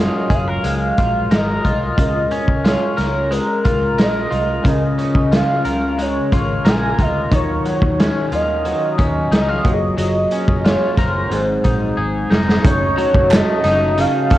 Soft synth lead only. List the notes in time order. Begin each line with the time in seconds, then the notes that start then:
0.00 D#5
0.34 F5
1.35 D#5
2.01 D#5
2.68 C#5
3.32 A#4
4.01 D#5
4.68 D#5
5.35 F5
6.01 C#5
6.68 G#5
7.01 D#5
7.35 C#5
7.68 C#5
8.34 D#5
9.35 D#5
10.00 D#5
10.66 C#5
11.00 C5
12.67 C#5
13.34 D#5
13.99 F5